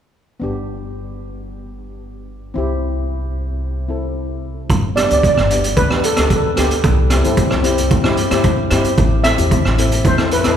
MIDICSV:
0, 0, Header, 1, 5, 480
1, 0, Start_track
1, 0, Key_signature, 1, "major"
1, 0, Tempo, 535236
1, 369, Time_signature, 4, 2, 24, 8
1, 9477, End_track
2, 0, Start_track
2, 0, Title_t, "Steel pan"
2, 0, Program_c, 0, 114
2, 4446, Note_on_c, 0, 74, 85
2, 4513, Note_off_c, 0, 74, 0
2, 4522, Note_on_c, 0, 74, 60
2, 4585, Note_off_c, 0, 74, 0
2, 4597, Note_on_c, 0, 74, 68
2, 4637, Note_off_c, 0, 74, 0
2, 4648, Note_on_c, 0, 74, 60
2, 4714, Note_off_c, 0, 74, 0
2, 4737, Note_on_c, 0, 74, 71
2, 4779, Note_off_c, 0, 74, 0
2, 4790, Note_on_c, 0, 74, 65
2, 4853, Note_off_c, 0, 74, 0
2, 5173, Note_on_c, 0, 71, 89
2, 5396, Note_off_c, 0, 71, 0
2, 5425, Note_on_c, 0, 69, 76
2, 5485, Note_off_c, 0, 69, 0
2, 5496, Note_on_c, 0, 69, 59
2, 5550, Note_off_c, 0, 69, 0
2, 5561, Note_on_c, 0, 69, 64
2, 5623, Note_off_c, 0, 69, 0
2, 5632, Note_on_c, 0, 69, 54
2, 5688, Note_off_c, 0, 69, 0
2, 5698, Note_on_c, 0, 69, 66
2, 5750, Note_off_c, 0, 69, 0
2, 5761, Note_on_c, 0, 69, 60
2, 5826, Note_off_c, 0, 69, 0
2, 5907, Note_on_c, 0, 67, 66
2, 6824, Note_off_c, 0, 67, 0
2, 8283, Note_on_c, 0, 76, 91
2, 8733, Note_off_c, 0, 76, 0
2, 9033, Note_on_c, 0, 72, 88
2, 9246, Note_off_c, 0, 72, 0
2, 9262, Note_on_c, 0, 71, 83
2, 9325, Note_off_c, 0, 71, 0
2, 9336, Note_on_c, 0, 71, 63
2, 9398, Note_off_c, 0, 71, 0
2, 9419, Note_on_c, 0, 71, 64
2, 9464, Note_off_c, 0, 71, 0
2, 9477, End_track
3, 0, Start_track
3, 0, Title_t, "Steel pan"
3, 0, Program_c, 1, 114
3, 355, Note_on_c, 1, 59, 57
3, 372, Note_on_c, 1, 62, 50
3, 389, Note_on_c, 1, 67, 61
3, 2247, Note_off_c, 1, 59, 0
3, 2255, Note_off_c, 1, 62, 0
3, 2264, Note_off_c, 1, 67, 0
3, 2279, Note_on_c, 1, 60, 60
3, 2294, Note_on_c, 1, 64, 55
3, 2312, Note_on_c, 1, 67, 67
3, 3461, Note_off_c, 1, 60, 0
3, 3468, Note_off_c, 1, 64, 0
3, 3478, Note_off_c, 1, 67, 0
3, 3482, Note_on_c, 1, 60, 47
3, 3488, Note_on_c, 1, 64, 43
3, 3499, Note_on_c, 1, 69, 51
3, 4207, Note_off_c, 1, 60, 0
3, 4210, Note_off_c, 1, 64, 0
3, 4215, Note_off_c, 1, 69, 0
3, 4441, Note_on_c, 1, 59, 55
3, 4450, Note_on_c, 1, 62, 54
3, 4459, Note_on_c, 1, 67, 66
3, 4520, Note_off_c, 1, 59, 0
3, 4524, Note_off_c, 1, 62, 0
3, 4529, Note_off_c, 1, 67, 0
3, 4562, Note_on_c, 1, 59, 60
3, 4572, Note_on_c, 1, 62, 52
3, 4580, Note_on_c, 1, 67, 63
3, 4783, Note_off_c, 1, 59, 0
3, 4788, Note_off_c, 1, 62, 0
3, 4792, Note_off_c, 1, 67, 0
3, 4929, Note_on_c, 1, 59, 53
3, 4939, Note_on_c, 1, 62, 51
3, 4946, Note_on_c, 1, 67, 63
3, 5147, Note_off_c, 1, 59, 0
3, 5152, Note_off_c, 1, 62, 0
3, 5155, Note_off_c, 1, 67, 0
3, 5293, Note_on_c, 1, 59, 61
3, 5301, Note_on_c, 1, 62, 58
3, 5312, Note_on_c, 1, 67, 69
3, 5436, Note_off_c, 1, 59, 0
3, 5440, Note_off_c, 1, 62, 0
3, 5445, Note_off_c, 1, 67, 0
3, 5526, Note_on_c, 1, 59, 59
3, 5535, Note_on_c, 1, 62, 51
3, 5543, Note_on_c, 1, 67, 63
3, 5746, Note_off_c, 1, 59, 0
3, 5750, Note_off_c, 1, 62, 0
3, 5754, Note_off_c, 1, 67, 0
3, 5880, Note_on_c, 1, 59, 61
3, 5888, Note_on_c, 1, 62, 53
3, 5898, Note_on_c, 1, 67, 69
3, 6126, Note_off_c, 1, 59, 0
3, 6130, Note_off_c, 1, 62, 0
3, 6135, Note_off_c, 1, 67, 0
3, 6369, Note_on_c, 1, 60, 57
3, 6380, Note_on_c, 1, 64, 53
3, 6390, Note_on_c, 1, 67, 64
3, 6444, Note_off_c, 1, 60, 0
3, 6449, Note_off_c, 1, 64, 0
3, 6455, Note_off_c, 1, 67, 0
3, 6493, Note_on_c, 1, 60, 72
3, 6501, Note_on_c, 1, 64, 62
3, 6512, Note_on_c, 1, 69, 79
3, 6709, Note_off_c, 1, 60, 0
3, 6713, Note_off_c, 1, 64, 0
3, 6719, Note_off_c, 1, 69, 0
3, 6840, Note_on_c, 1, 60, 71
3, 6850, Note_on_c, 1, 64, 65
3, 6860, Note_on_c, 1, 67, 79
3, 7063, Note_off_c, 1, 60, 0
3, 7067, Note_off_c, 1, 64, 0
3, 7073, Note_off_c, 1, 67, 0
3, 7205, Note_on_c, 1, 60, 72
3, 7214, Note_on_c, 1, 64, 69
3, 7224, Note_on_c, 1, 67, 80
3, 7352, Note_off_c, 1, 60, 0
3, 7356, Note_off_c, 1, 64, 0
3, 7361, Note_off_c, 1, 67, 0
3, 7450, Note_on_c, 1, 60, 66
3, 7457, Note_on_c, 1, 64, 63
3, 7466, Note_on_c, 1, 67, 74
3, 7668, Note_off_c, 1, 60, 0
3, 7671, Note_off_c, 1, 64, 0
3, 7676, Note_off_c, 1, 67, 0
3, 7808, Note_on_c, 1, 60, 73
3, 7819, Note_on_c, 1, 64, 65
3, 7825, Note_on_c, 1, 67, 86
3, 8050, Note_off_c, 1, 60, 0
3, 8055, Note_off_c, 1, 64, 0
3, 8058, Note_off_c, 1, 67, 0
3, 8286, Note_on_c, 1, 60, 61
3, 8296, Note_on_c, 1, 64, 53
3, 8303, Note_on_c, 1, 69, 67
3, 8362, Note_off_c, 1, 60, 0
3, 8367, Note_off_c, 1, 64, 0
3, 8371, Note_off_c, 1, 69, 0
3, 8409, Note_on_c, 1, 60, 60
3, 8413, Note_on_c, 1, 64, 53
3, 8422, Note_on_c, 1, 67, 66
3, 8627, Note_off_c, 1, 60, 0
3, 8629, Note_off_c, 1, 64, 0
3, 8633, Note_off_c, 1, 67, 0
3, 8767, Note_on_c, 1, 60, 62
3, 8775, Note_on_c, 1, 64, 54
3, 8783, Note_on_c, 1, 69, 66
3, 8985, Note_off_c, 1, 60, 0
3, 8989, Note_off_c, 1, 64, 0
3, 8993, Note_off_c, 1, 69, 0
3, 9129, Note_on_c, 1, 60, 65
3, 9136, Note_on_c, 1, 64, 57
3, 9145, Note_on_c, 1, 69, 69
3, 9273, Note_off_c, 1, 60, 0
3, 9277, Note_off_c, 1, 64, 0
3, 9281, Note_off_c, 1, 69, 0
3, 9365, Note_on_c, 1, 60, 55
3, 9370, Note_on_c, 1, 64, 55
3, 9380, Note_on_c, 1, 69, 67
3, 9477, Note_off_c, 1, 60, 0
3, 9477, Note_off_c, 1, 64, 0
3, 9477, Note_off_c, 1, 69, 0
3, 9477, End_track
4, 0, Start_track
4, 0, Title_t, "Upright bass"
4, 0, Program_c, 2, 32
4, 372, Note_on_c, 2, 31, 58
4, 2255, Note_off_c, 2, 31, 0
4, 2292, Note_on_c, 2, 36, 67
4, 4176, Note_off_c, 2, 36, 0
4, 4214, Note_on_c, 2, 31, 74
4, 4537, Note_off_c, 2, 31, 0
4, 4582, Note_on_c, 2, 38, 69
4, 4793, Note_off_c, 2, 38, 0
4, 4819, Note_on_c, 2, 31, 68
4, 5137, Note_off_c, 2, 31, 0
4, 5175, Note_on_c, 2, 38, 73
4, 5498, Note_off_c, 2, 38, 0
4, 5542, Note_on_c, 2, 38, 67
4, 5859, Note_off_c, 2, 38, 0
4, 5897, Note_on_c, 2, 38, 66
4, 6110, Note_off_c, 2, 38, 0
4, 6134, Note_on_c, 2, 36, 77
4, 6458, Note_off_c, 2, 36, 0
4, 6502, Note_on_c, 2, 43, 71
4, 6714, Note_off_c, 2, 43, 0
4, 6747, Note_on_c, 2, 36, 71
4, 7061, Note_off_c, 2, 36, 0
4, 7094, Note_on_c, 2, 43, 71
4, 7418, Note_off_c, 2, 43, 0
4, 7458, Note_on_c, 2, 43, 68
4, 7776, Note_off_c, 2, 43, 0
4, 7813, Note_on_c, 2, 43, 66
4, 8027, Note_off_c, 2, 43, 0
4, 8051, Note_on_c, 2, 33, 74
4, 8375, Note_off_c, 2, 33, 0
4, 8420, Note_on_c, 2, 40, 74
4, 8632, Note_off_c, 2, 40, 0
4, 8661, Note_on_c, 2, 33, 68
4, 8977, Note_off_c, 2, 33, 0
4, 9013, Note_on_c, 2, 40, 77
4, 9336, Note_off_c, 2, 40, 0
4, 9385, Note_on_c, 2, 40, 67
4, 9477, Note_off_c, 2, 40, 0
4, 9477, End_track
5, 0, Start_track
5, 0, Title_t, "Drums"
5, 4211, Note_on_c, 9, 36, 94
5, 4213, Note_on_c, 9, 42, 55
5, 4301, Note_off_c, 9, 36, 0
5, 4303, Note_off_c, 9, 42, 0
5, 4457, Note_on_c, 9, 37, 71
5, 4457, Note_on_c, 9, 42, 67
5, 4547, Note_off_c, 9, 37, 0
5, 4547, Note_off_c, 9, 42, 0
5, 4578, Note_on_c, 9, 42, 51
5, 4667, Note_off_c, 9, 42, 0
5, 4694, Note_on_c, 9, 36, 73
5, 4698, Note_on_c, 9, 42, 54
5, 4784, Note_off_c, 9, 36, 0
5, 4787, Note_off_c, 9, 42, 0
5, 4819, Note_on_c, 9, 37, 62
5, 4908, Note_off_c, 9, 37, 0
5, 4936, Note_on_c, 9, 42, 63
5, 5026, Note_off_c, 9, 42, 0
5, 5056, Note_on_c, 9, 42, 52
5, 5146, Note_off_c, 9, 42, 0
5, 5171, Note_on_c, 9, 42, 52
5, 5173, Note_on_c, 9, 36, 86
5, 5261, Note_off_c, 9, 42, 0
5, 5262, Note_off_c, 9, 36, 0
5, 5295, Note_on_c, 9, 37, 73
5, 5385, Note_off_c, 9, 37, 0
5, 5412, Note_on_c, 9, 42, 71
5, 5502, Note_off_c, 9, 42, 0
5, 5530, Note_on_c, 9, 37, 73
5, 5530, Note_on_c, 9, 42, 53
5, 5620, Note_off_c, 9, 37, 0
5, 5620, Note_off_c, 9, 42, 0
5, 5651, Note_on_c, 9, 42, 52
5, 5652, Note_on_c, 9, 36, 70
5, 5741, Note_off_c, 9, 42, 0
5, 5742, Note_off_c, 9, 36, 0
5, 5891, Note_on_c, 9, 37, 74
5, 5891, Note_on_c, 9, 42, 72
5, 5980, Note_off_c, 9, 37, 0
5, 5980, Note_off_c, 9, 42, 0
5, 6014, Note_on_c, 9, 42, 52
5, 6104, Note_off_c, 9, 42, 0
5, 6131, Note_on_c, 9, 42, 50
5, 6133, Note_on_c, 9, 36, 95
5, 6220, Note_off_c, 9, 42, 0
5, 6222, Note_off_c, 9, 36, 0
5, 6369, Note_on_c, 9, 37, 73
5, 6369, Note_on_c, 9, 42, 70
5, 6459, Note_off_c, 9, 37, 0
5, 6459, Note_off_c, 9, 42, 0
5, 6496, Note_on_c, 9, 42, 49
5, 6586, Note_off_c, 9, 42, 0
5, 6609, Note_on_c, 9, 42, 50
5, 6612, Note_on_c, 9, 36, 70
5, 6698, Note_off_c, 9, 42, 0
5, 6702, Note_off_c, 9, 36, 0
5, 6732, Note_on_c, 9, 37, 66
5, 6821, Note_off_c, 9, 37, 0
5, 6850, Note_on_c, 9, 42, 63
5, 6940, Note_off_c, 9, 42, 0
5, 6975, Note_on_c, 9, 42, 55
5, 7065, Note_off_c, 9, 42, 0
5, 7090, Note_on_c, 9, 42, 47
5, 7092, Note_on_c, 9, 36, 89
5, 7179, Note_off_c, 9, 42, 0
5, 7182, Note_off_c, 9, 36, 0
5, 7209, Note_on_c, 9, 37, 78
5, 7299, Note_off_c, 9, 37, 0
5, 7327, Note_on_c, 9, 42, 61
5, 7417, Note_off_c, 9, 42, 0
5, 7453, Note_on_c, 9, 37, 73
5, 7453, Note_on_c, 9, 42, 51
5, 7543, Note_off_c, 9, 37, 0
5, 7543, Note_off_c, 9, 42, 0
5, 7565, Note_on_c, 9, 42, 47
5, 7571, Note_on_c, 9, 36, 71
5, 7654, Note_off_c, 9, 42, 0
5, 7660, Note_off_c, 9, 36, 0
5, 7807, Note_on_c, 9, 37, 76
5, 7807, Note_on_c, 9, 42, 65
5, 7896, Note_off_c, 9, 37, 0
5, 7896, Note_off_c, 9, 42, 0
5, 7931, Note_on_c, 9, 42, 53
5, 8021, Note_off_c, 9, 42, 0
5, 8050, Note_on_c, 9, 42, 52
5, 8051, Note_on_c, 9, 36, 94
5, 8140, Note_off_c, 9, 42, 0
5, 8141, Note_off_c, 9, 36, 0
5, 8287, Note_on_c, 9, 37, 72
5, 8287, Note_on_c, 9, 42, 70
5, 8377, Note_off_c, 9, 37, 0
5, 8377, Note_off_c, 9, 42, 0
5, 8412, Note_on_c, 9, 42, 53
5, 8501, Note_off_c, 9, 42, 0
5, 8530, Note_on_c, 9, 42, 55
5, 8531, Note_on_c, 9, 36, 72
5, 8620, Note_off_c, 9, 42, 0
5, 8621, Note_off_c, 9, 36, 0
5, 8656, Note_on_c, 9, 37, 65
5, 8746, Note_off_c, 9, 37, 0
5, 8772, Note_on_c, 9, 42, 67
5, 8862, Note_off_c, 9, 42, 0
5, 8892, Note_on_c, 9, 42, 57
5, 8981, Note_off_c, 9, 42, 0
5, 9010, Note_on_c, 9, 36, 88
5, 9010, Note_on_c, 9, 42, 51
5, 9099, Note_off_c, 9, 42, 0
5, 9100, Note_off_c, 9, 36, 0
5, 9130, Note_on_c, 9, 37, 76
5, 9220, Note_off_c, 9, 37, 0
5, 9248, Note_on_c, 9, 42, 72
5, 9337, Note_off_c, 9, 42, 0
5, 9363, Note_on_c, 9, 37, 76
5, 9363, Note_on_c, 9, 42, 54
5, 9453, Note_off_c, 9, 37, 0
5, 9453, Note_off_c, 9, 42, 0
5, 9477, End_track
0, 0, End_of_file